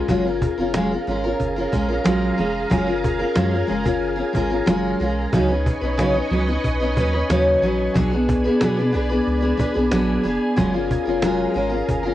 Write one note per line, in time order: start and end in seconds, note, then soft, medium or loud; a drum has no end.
0.07 0.48 F#1 loud
0.07 0.25 F#3 medium
0.07 0.25 G#3 medium
0.07 0.26 C#4 medium
0.07 0.25 F4 medium
0.07 5.29 G#4 medium
0.07 0.23 A#4 medium
0.07 5.29 F5 medium
0.07 12.14 G#5 medium
0.07 5.29 A#5 medium
0.07 cajon bass medium
0.25 0.59 C#4 soft
0.25 0.58 F4 soft
0.25 0.56 A#4 medium
0.42 cajon bass medium
0.58 0.97 F1 medium
0.58 0.75 C#4 soft
0.58 0.75 F4 medium
0.58 0.74 A#4 medium
0.74 0.91 F#3 medium
0.74 0.92 G#3 medium
0.74 0.92 C#4 medium
0.74 0.92 F4 medium
0.74 0.90 A#4 medium
0.74 cajon slap loud
0.91 1.07 C#4 soft
0.91 1.08 F4 soft
0.91 1.07 A#4 soft
1.07 1.34 G#1 loud
1.07 1.24 G#3 medium
1.07 1.24 C#4 medium
1.07 1.25 F4 medium
1.07 1.23 A#4 medium
1.07 cajon slap soft
1.24 1.58 C#4 soft
1.24 1.57 F4 medium
1.24 1.55 A#4 medium
1.39 1.66 F#1 loud
1.39 cajon bass medium
1.39 cajon slap soft
1.56 1.71 C#4 soft
1.56 1.73 F4 medium
1.56 1.73 A#4 medium
1.72 1.99 A#1 medium
1.72 1.89 G#3 medium
1.72 1.89 C#4 medium
1.72 1.89 F4 medium
1.72 1.87 A#4 medium
1.72 cajon bass medium
1.88 2.04 C#4 soft
1.88 2.05 F4 soft
1.88 2.05 A#4 medium
2.04 2.32 A#1 medium
2.04 2.38 F#3 medium
2.04 2.36 G#3 medium
2.04 2.38 C#4 medium
2.04 2.39 F4 medium
2.04 2.39 A#4 medium
2.04 cajon slap loud
2.38 2.65 F1 loud
2.38 2.69 G#3 medium
2.38 2.70 C#4 medium
2.38 2.71 F4 medium
2.38 2.71 A#4 medium
2.38 cajon slap soft
2.70 3.24 F#1 loud
2.70 2.87 F#3 medium
2.70 2.87 G#3 medium
2.70 2.88 C#4 medium
2.70 2.87 F4 medium
2.70 2.85 A#4 medium
2.70 cajon bass loud
2.86 3.21 C#4 soft
2.86 3.20 F4 soft
2.86 3.18 A#4 medium
3.04 cajon bass medium
3.19 3.35 C#4 soft
3.19 3.36 F4 medium
3.19 3.36 A#4 medium
3.35 3.63 F#2 medium
3.35 3.52 F#3 medium
3.35 3.52 G#3 medium
3.35 3.53 C#4 medium
3.35 3.52 F4 medium
3.35 3.50 A#4 medium
3.35 cajon slap loud
3.51 3.67 C#4 soft
3.51 3.68 F4 soft
3.51 3.68 A#4 soft
3.67 4.22 F#1 medium
3.67 3.85 G#3 medium
3.67 3.85 C#4 medium
3.67 3.84 F4 medium
3.67 3.83 A#4 medium
3.67 cajon slap soft
3.84 4.18 C#4 medium
3.84 4.16 F4 medium
3.84 4.15 A#4 medium
3.84 cajon bass medium
4.02 cajon slap soft
4.16 4.33 C#4 soft
4.16 4.34 F4 medium
4.16 4.34 A#4 medium
4.33 4.61 G#1 medium
4.33 4.50 G#3 medium
4.33 4.51 C#4 medium
4.33 4.50 F4 medium
4.33 4.48 A#4 medium
4.33 cajon bass medium
4.50 4.66 C#4 soft
4.50 4.67 F4 soft
4.50 4.67 A#4 medium
4.66 4.94 F#1 medium
4.66 5.00 F#3 medium
4.66 4.99 G#3 medium
4.66 5.00 C#4 medium
4.66 5.01 F4 medium
4.66 5.01 A#4 medium
4.66 cajon slap loud
5.00 5.27 B1 medium
5.00 5.33 G#3 medium
5.00 5.33 C#4 medium
5.00 5.34 F4 medium
5.00 5.35 A#4 medium
5.00 cajon slap soft
5.33 5.73 C#2 loud
5.33 5.49 C#3 medium
5.33 5.50 F#3 medium
5.33 5.50 C#4 medium
5.33 5.49 D#4 medium
5.33 7.94 B4 medium
5.33 5.47 B4 medium
5.33 7.94 D#5 medium
5.33 7.94 C#6 medium
5.33 cajon bass loud
5.48 5.83 C#4 soft
5.48 5.82 D#4 medium
5.48 5.80 B4 medium
5.66 cajon bass medium
5.81 6.21 B1 medium
5.81 5.98 C#4 soft
5.81 5.98 D#4 medium
5.81 5.98 B4 medium
5.98 6.15 C#3 medium
5.98 6.15 F#3 medium
5.98 6.16 C#4 medium
5.98 6.14 D#4 medium
5.98 6.13 B4 medium
5.98 cajon slap loud
6.14 6.31 C#4 soft
6.14 6.32 D#4 soft
6.14 6.31 B4 soft
6.30 6.58 C#2 loud
6.30 6.47 F#3 medium
6.30 6.48 C#4 medium
6.30 6.48 D#4 medium
6.30 6.46 B4 medium
6.30 cajon slap soft
6.47 6.82 C#4 soft
6.47 6.81 D#4 medium
6.47 6.79 B4 medium
6.64 6.98 B1 loud
6.64 cajon bass medium
6.64 cajon slap soft
6.80 6.97 C#4 soft
6.80 6.98 D#4 medium
6.80 6.97 B4 medium
6.97 7.23 D#2 medium
6.97 7.13 F#3 medium
6.97 7.14 C#4 medium
6.97 7.14 D#4 medium
6.97 7.12 B4 medium
6.97 cajon bass medium
7.13 7.30 C#4 medium
7.13 7.30 D#4 medium
7.13 7.30 B4 medium
7.29 7.56 D#2 loud
7.29 7.62 C#3 medium
7.29 7.61 F#3 medium
7.29 7.62 C#4 loud
7.29 7.63 D#4 medium
7.29 7.64 B4 loud
7.29 cajon slap loud
7.62 7.89 A#1 medium
7.62 7.94 F#3 medium
7.62 7.96 C#4 medium
7.62 7.96 D#4 medium
7.62 7.96 B4 medium
7.62 cajon slap soft
7.94 8.48 B1 loud
7.94 8.11 B2 medium
7.94 8.12 F#3 medium
7.94 8.12 B3 medium
7.94 8.12 D4 medium
7.94 8.11 G#4 medium
7.94 12.14 G#4 medium
7.94 8.09 B4 medium
7.94 10.56 D5 medium
7.94 10.56 B5 medium
7.94 cajon bass loud
8.11 8.46 B3 soft
8.11 8.45 D4 medium
8.11 8.44 G#4 medium
8.11 8.43 B4 medium
8.11 cajon slap soft
8.29 cajon bass loud
8.44 8.61 B3 soft
8.44 8.61 D4 medium
8.44 8.61 G#4 medium
8.44 8.61 B4 medium
8.61 8.77 B2 medium
8.61 8.96 B2 medium
8.61 8.78 F#3 medium
8.61 8.78 B3 medium
8.61 8.78 D4 medium
8.61 8.77 G#4 medium
8.61 8.76 B4 medium
8.61 cajon slap loud
8.77 8.91 B3 soft
8.77 8.93 D4 soft
8.77 8.94 G#4 medium
8.77 8.94 B4 medium
8.92 9.20 B1 loud
8.92 9.09 B3 medium
8.92 9.10 D4 medium
8.92 9.10 G#4 medium
8.92 9.08 B4 medium
8.92 cajon slap soft
9.09 9.44 B3 soft
9.09 9.42 D4 soft
9.09 9.41 G#4 medium
9.09 9.39 B4 medium
9.27 9.53 C#2 medium
9.27 cajon slap soft
9.41 9.58 D4 soft
9.41 9.58 G#4 medium
9.41 9.58 B4 medium
9.45 9.56 B3 soft
9.57 9.66 B1 soft
9.57 9.75 B3 medium
9.57 9.75 D4 medium
9.57 9.74 G#4 medium
9.57 9.73 B4 medium
9.57 cajon bass medium
9.74 9.89 B1 medium
9.74 9.91 B3 soft
9.74 9.91 D4 soft
9.74 9.92 G#4 medium
9.74 9.91 B4 medium
9.92 10.18 A#1 medium
9.92 10.25 F#3 medium
9.92 10.22 B3 medium
9.92 10.24 D4 medium
9.92 10.25 G#4 medium
9.92 10.26 B4 medium
9.92 cajon slap loud
10.23 10.38 F1 medium
10.23 10.56 B3 medium
10.23 10.57 D4 medium
10.23 10.58 G#4 medium
10.23 cajon slap soft
10.28 10.58 B4 medium
10.56 10.97 F#1 loud
10.56 10.73 F#3 medium
10.56 10.73 G#3 medium
10.56 10.74 C#4 medium
10.56 10.73 F4 medium
10.56 10.71 A#4 medium
10.56 12.14 F5 medium
10.56 12.14 A#5 medium
10.56 cajon bass loud
10.72 11.07 C#4 soft
10.72 11.06 F4 medium
10.72 11.04 A#4 soft
10.91 cajon bass medium
11.05 11.46 F1 medium
11.05 11.22 C#4 soft
11.05 11.23 F4 soft
11.05 11.22 A#4 soft
11.22 11.55 F#3 medium
11.22 11.53 G#3 medium
11.22 11.54 C#4 medium
11.22 11.55 F4 medium
11.22 11.57 A#4 medium
11.22 cajon slap loud
11.54 11.82 G#1 medium
11.54 11.71 G#3 medium
11.54 11.72 C#4 medium
11.54 11.70 F4 medium
11.54 11.68 A#4 medium
11.54 cajon slap soft
11.70 12.04 F4 medium
11.70 12.02 A#4 medium
11.74 12.06 C#4 soft
11.88 12.14 F#1 loud
11.88 cajon bass medium
11.88 cajon slap soft
12.03 12.14 C#4 soft
12.03 12.14 F4 medium
12.03 12.14 A#4 medium